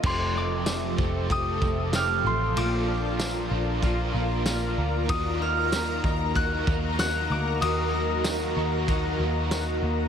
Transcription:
Already playing: clean electric guitar D#3 A3 C4
0.03 picked electric bass F1, overdriven electric guitar F2 C3 F3 A3 C4, clean electric guitar F2 G4, ambient pad F4 A4 C5 G5, harp C6, kick, crash
0.07 overdriven electric guitar G4
0.36 clean electric guitar C4, harp D6
0.66 clean electric guitar A3, snare, ride, tambourine
0.97 picked electric bass F1, clean electric guitar C4, overdriven electric guitar C4 G4, kick
1.01 overdriven electric guitar F3 A3
1.27 overdriven electric guitar F2 C3, clean electric guitar G4, kick, ride
1.31 overdriven electric guitar F3 A3, harp D#6
1.36 overdriven electric guitar G4
1.62 picked electric bass F1, clean electric guitar A3, kick
1.93 clean electric guitar G4, harp F6, snare, ride, tambourine
2.24 picked electric bass A1, clean electric guitar A3, harp C6
2.56 picked electric bass A#1, overdriven electric guitar A#2 F3 A#3 D4 F4, clean electric guitar A#2 F4, ambient pad A#4 D5 A#5, harp D6, ride
2.88 clean electric guitar D4
3.19 clean electric guitar A#3, snare, ride, tambourine
3.50 picked electric bass A#1, clean electric guitar D4, overdriven electric guitar D4 F4
3.55 overdriven electric guitar A#3
3.81 overdriven electric guitar A#2 F3 A#3 D4, clean electric guitar F4, kick, ride
3.85 overdriven electric guitar F4
4.12 picked electric bass A#1, clean electric guitar A#3, overdriven electric guitar D4 F4
4.18 overdriven electric guitar A#3
4.46 clean electric guitar F4, snare, ride, tambourine
4.78 picked electric bass D2, clean electric guitar A#3
5.06 picked electric bass D#2, overdriven electric guitar D#3 A#3, clean electric guitar F#4, ambient pad D#5, harp D#6, kick, ride
5.10 overdriven electric guitar D#4, ambient pad F#4
5.14 overdriven electric guitar F#4
5.40 clean electric guitar D#4, harp F6
5.72 clean electric guitar A#3, snare, ride, tambourine
6.04 picked electric bass D#2, clean electric guitar D#4, kick
6.35 overdriven electric guitar D#3 A#3 D#4 F#4, clean electric guitar F#4, harp F#6, kick, ride
6.66 picked electric bass D#2, clean electric guitar A#3, overdriven electric guitar D#4 F#4, kick
6.71 overdriven electric guitar A#3
6.99 clean electric guitar F#4, harp F#6, snare, ride, tambourine
7.30 picked electric bass D2, clean electric guitar A#3, harp D6
7.60 picked electric bass D#2, overdriven electric guitar D#3 A#3 D#4 F#4, clean electric guitar D#3 F#4, ambient pad D#5, harp D#6, ride
7.94 clean electric guitar D#4
8.24 clean electric guitar A#3, snare, ride, tambourine
8.55 picked electric bass D#2, clean electric guitar D#4, overdriven electric guitar D#4 F#4
8.61 overdriven electric guitar A#3
8.87 overdriven electric guitar D#3 A#3 D#4, clean electric guitar F#4, kick, ride
8.91 overdriven electric guitar F#4
9.18 picked electric bass D#2, clean electric guitar A#3, overdriven electric guitar D#4 F#4
9.24 overdriven electric guitar A#3
9.51 clean electric guitar F#4, snare, ride, tambourine
9.82 picked electric bass D#2, clean electric guitar A#3

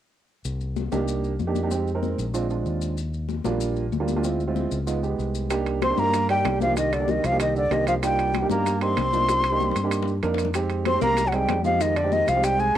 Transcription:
0.45 fingered electric bass C2, high conga, maracas
0.61 high conga, maracas
0.76 high conga, maracas
0.92 fingered electric bass C2, upright piano A#3 D4 D#4 G4, high conga, maracas
1.08 high conga, maracas
1.24 high conga, maracas
1.39 fingered electric bass F2, high conga, maracas
1.47 upright piano A#3 D4 D#4 G4
1.55 high conga, maracas
1.63 upright piano A#3 D4 D#4 G4
1.71 upright piano G#3 C4 D#4 G4, high conga, maracas
1.87 high conga, maracas
1.94 upright piano G#3 C4 D#4 A#4
2.03 high conga, maracas
2.18 fingered electric bass A#1, high conga, maracas
2.34 upright piano G#3 C4 D4 F4, maracas
2.50 upright piano G#3 C4 D4 F4, high conga, maracas
2.66 fingered electric bass D#2, high conga, maracas
2.81 high conga, maracas
2.97 high conga, maracas
3.13 high conga, maracas
3.29 high conga, maracas
3.44 fingered electric bass A#1, upright piano G3 A#3 D4 F4, high conga, maracas
3.61 high conga, maracas
3.76 high conga, maracas
3.92 fingered electric bass D2, high conga, maracas
4.00 upright piano G3 A#3 D4 F4
4.08 high conga, maracas
4.16 upright piano G3 A#3 D4 F4
4.24 upright piano G#3 C4 E4 F4, high conga, maracas
4.40 high conga, maracas
4.48 upright piano G#3 C4 E4 F4
4.56 high conga, maracas
4.72 fingered electric bass C#2, high conga, maracas
4.87 upright piano G#3 B3 D#4 F4, high conga, maracas
5.03 upright piano G#3 B3 D#4 G4, high conga, maracas
5.19 fingered electric bass C2, high conga, maracas
5.35 high conga, maracas
5.50 upright piano A#3 D4 D#4 G4, high bongo, high conga, high timbale, maracas
5.66 high conga, high timbale, maracas
5.82 tenor saxophone C4, flute C6, high bongo, high conga, high timbale, maracas
5.90 upright piano A#3 D4 D#4 G4
5.98 fingered electric bass G2, tenor saxophone A#3, flute A#5, high conga, maracas
6.14 high bongo, high conga, high timbale, maracas
6.29 tenor saxophone G3, upright piano A#3 D4 D#4 G4, flute G5, high timbale, maracas
6.45 fingered electric bass C2, high bongo, low bongo, high conga, high timbale, low timbale, maracas
6.60 tenor saxophone F3, upright piano A#3 D4 D#4 G4, flute F5, high conga, maracas
6.76 tenor saxophone D#3, flute D#5, high bongo, high conga, high timbale, maracas
6.92 tenor saxophone D3, flute D5, high bongo, high conga, high timbale, maracas
7.00 upright piano A#3 D4 D#4 G4
7.08 tenor saxophone D#3, flute D#5, high bongo, high conga, maracas
7.24 fingered electric bass C2, tenor saxophone F3, flute F5, high conga, high timbale, maracas
7.32 upright piano A#3 D4 D#4 G4
7.39 tenor saxophone D#3, flute D#5, high bongo, high conga, high timbale, maracas
7.55 tenor saxophone D3, flute D5, high bongo, high conga, maracas
7.71 fingered electric bass C2, tenor saxophone D#3, upright piano A#3 D4 D#4 G4, flute D#5, high bongo, low bongo, high conga, high timbale, low timbale, maracas
7.86 tenor saxophone F3, flute F5, high bongo, high conga, high timbale, maracas
8.02 tenor saxophone G3, upright piano A#3 D4 D#4 F4, flute G5, high bongo, high conga, high timbale, maracas
8.18 high conga, high timbale, maracas
8.34 high bongo, high conga, high timbale, maracas
8.42 upright piano A#3 D4 D#4 G4
8.49 fingered electric bass G2, tenor saxophone A#3, flute A#5, high conga, maracas
8.65 high bongo, high conga, high timbale, maracas
8.81 upright piano A#3 D4 D#4 G4, tenor saxophone C4, flute C6, high timbale, maracas
8.97 fingered electric bass C2, high bongo, low bongo, high conga, high timbale, maracas
9.12 upright piano A#3 D4 D#4 F4, high conga, maracas
9.28 high bongo, high conga, high timbale, maracas
9.40 high bongo
9.44 high conga, high timbale, maracas
9.50 upright piano A#3 D4 D#4 G4, high bongo
9.60 high bongo, high conga, maracas
9.71 low bongo
9.75 fingered electric bass G2, high conga, high timbale, maracas
9.84 upright piano A#3 D4 D#4 G4
9.91 high timbale, maracas
10.02 low bongo
10.07 maracas
10.23 fingered electric bass F2, upright piano A#3 D4 D#4 A#4, low bongo, high conga, high timbale, maracas
10.34 low bongo, high timbale
10.39 high conga, maracas
10.45 low bongo
10.54 upright piano G#3 C4 D#4 G4, high bongo, high conga, high timbale, maracas
10.69 high conga, high timbale, maracas
10.85 tenor saxophone C4, flute C6, high bongo, high conga, high timbale, maracas
10.94 upright piano G#3 C4 D#4 G4
11.01 fingered electric bass C2, tenor saxophone A#3, flute A#5, high conga, maracas
11.17 high bongo, high conga, high timbale, maracas
11.26 tenor saxophone F#3, flute F#5
11.32 tenor saxophone G3, upright piano G#3 C4 D#4 G#4, flute G5, high conga, high timbale, maracas
11.49 fingered electric bass F2, high bongo, low bongo, high conga, high timbale, low timbale, maracas
11.64 tenor saxophone F3, upright piano G#3 C4 D#4 G4, flute F5, high conga, maracas
11.80 tenor saxophone D#3, flute D#5, high bongo, high conga, high timbale, maracas
11.96 tenor saxophone D3, flute D5, high bongo, high conga, high timbale, maracas
12.04 upright piano G#3 C4 D#4 G4
12.12 tenor saxophone D#3, flute D#5, high bongo, high conga, maracas
12.28 fingered electric bass C2, tenor saxophone F3, flute F5, high conga, high timbale, maracas
12.36 upright piano G#3 C4 D#4 G4
12.43 tenor saxophone G3, flute G5, high bongo, high timbale, maracas
12.59 tenor saxophone G#3, flute G#5, high bongo, high conga, maracas

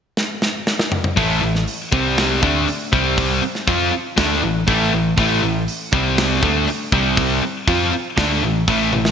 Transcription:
0.17 snare
0.42 snare
0.67 snare
0.79 snare
0.92 mid tom
1.04 mid tom
1.16 picked electric bass A1, distorted electric guitar A2 E3 A3, kick, open hi-hat
1.41 picked electric bass A1, distorted electric guitar A2 E3
1.55 snare
1.68 open hi-hat
1.92 picked electric bass C2, distorted electric guitar C3 G3 C4, kick
2.18 snare, open hi-hat
2.42 picked electric bass D2, distorted electric guitar D3 A3 D4, kick
2.67 muted distorted electric guitar stroke, muted picked electric bass stroke, muted overdriven electric guitar stroke, open hi-hat
2.92 picked electric bass C2, distorted electric guitar C3 G3 C4, kick
3.18 kick, open hi-hat
3.43 muted distorted electric guitar stroke, muted overdriven electric guitar stroke
3.55 snare
3.67 picked electric bass F2, distorted electric guitar F3 C4 F4, kick, open hi-hat
3.92 muted distorted electric guitar stroke, muted overdriven electric guitar stroke, muted picked electric bass stroke
4.17 picked electric bass D2, distorted electric guitar D3 A3 D4, kick, snare, open hi-hat
4.43 picked electric bass A1, distorted electric guitar A2 E3
4.67 picked electric bass A1, distorted electric guitar A2 E3 A3, kick, open hi-hat
4.93 picked electric bass A1, distorted electric guitar A2 E3
5.18 picked electric bass A1, distorted electric guitar A2 E3 A3, kick, open hi-hat
5.43 picked electric bass A1, distorted electric guitar A2 E3
5.68 open hi-hat
5.93 picked electric bass C2, distorted electric guitar C3 G3 C4, kick
6.18 snare, open hi-hat
6.43 picked electric bass D2, distorted electric guitar D3 A3 D4, kick
6.67 muted overdriven electric guitar stroke, muted distorted electric guitar stroke, open hi-hat
6.92 picked electric bass C2, distorted electric guitar C3 G3 C4, kick
7.17 kick, open hi-hat
7.43 muted overdriven electric guitar stroke, muted distorted electric guitar stroke
7.68 picked electric bass F2, distorted electric guitar F3 C4 F4, kick, open hi-hat
7.92 muted overdriven electric guitar stroke, muted distorted electric guitar stroke, muted picked electric bass stroke
8.17 picked electric bass D2, distorted electric guitar D3 A3 D4, kick, snare, open hi-hat
8.43 picked electric bass A1, distorted electric guitar A2 E3
8.68 picked electric bass A1, distorted electric guitar A2 E3 A3, kick, open hi-hat
8.93 picked electric bass A1, distorted electric guitar A2 E3, high tom
9.05 snare

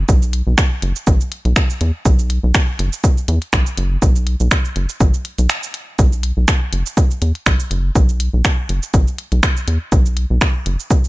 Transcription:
0.09 analog synth bass B1, kick, shaker
0.22 shaker
0.33 closed hi-hat
0.47 analog synth bass B1
0.58 finger snap, kick, shaker
0.82 analog synth bass F#1, closed hi-hat
0.96 shaker
1.07 analog synth bass A1, kick, shaker
1.21 shaker
1.32 closed hi-hat
1.45 analog synth bass B1, closed hi-hat
1.56 finger snap, kick, shaker
1.70 shaker
1.81 analog synth bass E2, closed hi-hat
2.05 analog synth bass B1, kick, shaker
2.19 shaker
2.30 closed hi-hat
2.43 analog synth bass B1
2.55 finger snap, kick, shaker
2.79 analog synth bass F#1, closed hi-hat
2.93 shaker
3.04 kick, shaker
3.17 shaker
3.28 analog synth bass E2, closed hi-hat
3.42 closed hi-hat
3.53 analog synth bass B1, finger snap, kick, shaker
3.66 shaker
3.77 analog synth bass F#1, closed hi-hat
4.02 analog synth bass B1, kick, shaker
4.16 shaker
4.27 closed hi-hat
4.40 analog synth bass B1, shaker
4.51 finger snap, kick, shaker
4.65 shaker
4.76 analog synth bass F#1, closed hi-hat
4.89 shaker
5.00 analog synth bass A1, kick, shaker
5.14 shaker
5.25 closed hi-hat
5.38 analog synth bass B1, closed hi-hat, shaker
5.50 finger snap, shaker
5.63 shaker
5.74 closed hi-hat
5.99 analog synth bass B1, kick, shaker
6.12 shaker
6.23 closed hi-hat
6.37 analog synth bass B1
6.48 finger snap, kick, shaker
6.73 analog synth bass F#1, closed hi-hat
6.86 shaker
6.97 kick, shaker
7.11 shaker
7.22 analog synth bass E2, closed hi-hat
7.35 closed hi-hat
7.46 analog synth bass B1, finger snap, kick, shaker
7.60 shaker
7.71 analog synth bass F#1, closed hi-hat
7.95 analog synth bass B1, kick, shaker
8.09 shaker
8.20 closed hi-hat
8.33 analog synth bass B1
8.45 finger snap, kick, shaker
8.69 analog synth bass F#1, closed hi-hat
8.83 shaker
8.94 analog synth bass A1, kick, shaker
9.07 shaker
9.18 closed hi-hat
9.32 analog synth bass B1, closed hi-hat
9.43 finger snap, kick, shaker
9.57 shaker
9.68 analog synth bass E2, closed hi-hat
9.92 analog synth bass B1, kick, shaker
10.06 shaker
10.17 closed hi-hat
10.30 analog synth bass B1
10.41 finger snap, kick, shaker
10.66 analog synth bass F#1, closed hi-hat
10.79 shaker
10.91 kick, shaker
11.04 shaker

